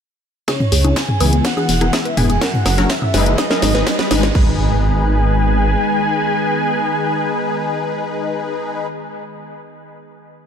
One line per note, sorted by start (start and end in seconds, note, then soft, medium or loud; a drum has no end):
0.48 0.59 C#3 medium
0.48 2.40 E3 medium
0.48 2.40 G#3 medium
0.48 0.59 C#4 medium
0.48 2.40 E4 medium
0.48 0.59 E4 medium
0.48 2.40 G#4 medium
0.48 0.59 G#4 medium
0.48 0.55 G#4 medium
0.48 0.98 C#5 loud
0.48 kick loud
0.48 snare soft
0.48 closed hi-hat medium
0.48 ride medium
0.48 riser medium
0.48 high woodblock medium
0.60 0.67 C#4 medium
0.60 mid tom medium
0.60 ride soft
0.72 0.93 C#2 loud
0.72 0.79 G#4 medium
0.72 open hi-hat loud
0.72 ride medium
0.84 1.01 C#3 medium
0.84 1.01 C#4 medium
0.84 0.91 C#4 medium
0.84 1.01 E4 medium
0.84 1.01 G#4 medium
0.84 closed hi-hat medium
0.84 high conga medium
0.84 high woodblock soft
0.96 1.03 C#4 medium
0.96 1.44 G#5 loud
0.96 kick loud
0.96 snare loud
0.96 snare medium
0.96 closed hi-hat medium
0.96 ride medium
1.09 1.15 C#4 medium
1.09 mid tom medium
1.20 1.41 C#2 medium
1.20 1.54 E3 loud
1.20 1.54 B3 medium
1.20 1.54 E4 medium
1.20 1.54 G#4 loud
1.20 1.27 B4 medium
1.20 open hi-hat loud
1.20 ride medium
1.20 high woodblock medium
1.33 1.40 B3 medium
1.33 closed hi-hat medium
1.44 1.52 B3 medium
1.44 1.95 F#5 loud
1.44 kick loud
1.44 snare medium
1.44 closed hi-hat medium
1.44 ride medium
1.57 1.74 E3 medium
1.57 1.74 B3 medium
1.57 1.74 E4 medium
1.57 1.74 G#4 medium
1.57 1.64 G#4 medium
1.57 ride soft
1.57 high conga medium
1.57 high woodblock soft
1.69 1.89 E1 medium
1.69 1.76 B3 medium
1.69 snare soft
1.69 open hi-hat loud
1.69 ride medium
1.81 2.14 E3 medium
1.81 2.14 B3 medium
1.81 2.14 E4 medium
1.81 2.14 G#4 medium
1.81 1.88 A#4 medium
1.81 closed hi-hat medium
1.93 2.00 B3 medium
1.93 2.19 E5 loud
1.93 kick loud
1.93 snare medium
1.93 snare loud
1.93 closed hi-hat medium
1.93 ride medium
1.93 high woodblock medium
2.05 2.12 B4 medium
2.05 closed hi-hat soft
2.17 2.38 E1 medium
2.17 2.24 B3 medium
2.17 2.28 B3 loud
2.17 2.28 E4 medium
2.17 2.28 G#4 loud
2.17 2.43 G#5 loud
2.17 mid tom medium
2.17 open hi-hat loud
2.17 ride medium
2.17 high conga medium
2.29 2.36 B3 medium
2.29 closed hi-hat medium
2.29 ride soft
2.29 high woodblock soft
2.41 2.52 F#3 medium
2.41 2.52 C#4 medium
2.41 2.52 F#4 medium
2.41 2.48 A#4 loud
2.41 2.52 A#4 medium
2.41 2.92 F#5 loud
2.41 kick loud
2.41 snare medium
2.41 closed hi-hat medium
2.41 ride medium
2.54 2.60 C#4 medium
2.54 mid tom medium
2.54 ride soft
2.66 2.86 F#1 loud
2.66 2.73 A#4 medium
2.66 snare medium
2.66 open hi-hat loud
2.66 ride medium
2.66 high woodblock medium
2.78 2.95 F#3 medium
2.78 2.85 C#4 medium
2.78 2.95 C#4 medium
2.78 2.95 F#4 medium
2.78 2.95 A#4 medium
2.78 snare medium
2.78 closed hi-hat medium
2.78 high conga medium
2.89 2.97 C#4 medium
2.89 3.38 E5 loud
2.89 kick loud
2.89 snare loud
2.89 snare medium
2.89 closed hi-hat medium
2.89 ride medium
3.02 3.09 C#4 medium
3.02 mid tom medium
3.02 high woodblock soft
3.14 3.35 F#1 medium
3.14 3.48 G#3 loud
3.14 3.48 D#4 medium
3.14 3.48 G#4 medium
3.14 3.21 B4 medium
3.14 3.48 B4 loud
3.14 snare medium
3.14 open hi-hat loud
3.14 ride medium
3.26 3.33 D#4 medium
3.26 closed hi-hat medium
3.38 3.45 D#4 medium
3.38 4.07 D#5 medium
3.38 kick loud
3.38 snare medium
3.38 closed hi-hat medium
3.38 ride medium
3.38 high woodblock medium
3.50 3.68 G#3 medium
3.50 3.68 D#4 medium
3.50 3.68 G#4 medium
3.50 3.57 A#4 medium
3.50 3.68 B4 medium
3.50 snare medium
3.50 ride soft
3.50 high conga medium
3.62 3.83 G#1 medium
3.62 3.69 D#4 medium
3.62 snare loud
3.62 open hi-hat loud
3.62 ride medium
3.75 4.08 G#3 medium
3.75 4.08 D#4 medium
3.75 4.08 G#4 medium
3.75 3.81 B4 medium
3.75 4.08 B4 medium
3.75 snare medium
3.75 closed hi-hat medium
3.75 high woodblock soft
3.86 3.94 D#4 medium
3.86 kick loud
3.86 snare loud
3.86 closed hi-hat medium
3.86 ride loud
3.99 4.06 B4 medium
3.99 snare loud
3.99 snare soft
3.99 closed hi-hat soft
4.11 4.31 G#1 medium
4.11 4.22 G#3 loud
4.11 4.18 D#4 medium
4.11 4.22 D#4 medium
4.11 4.22 G#4 medium
4.11 4.22 B4 loud
4.11 snare loud
4.11 open hi-hat loud
4.11 ride medium
4.11 high conga loud
4.11 high woodblock medium
4.23 4.30 D#4 medium
4.23 snare medium
4.23 closed hi-hat medium
4.23 ride soft
4.35 5.76 G#1 loud
4.35 8.86 D#3 medium
4.35 8.86 G#3 medium
4.35 8.86 B3 medium
4.35 8.86 D#4 medium
4.35 8.86 G#4 medium
4.35 8.87 G#4 medium
4.35 8.86 B4 medium
4.35 8.86 G#5 loud
4.35 kick loud
4.35 crash medium
4.35 impact medium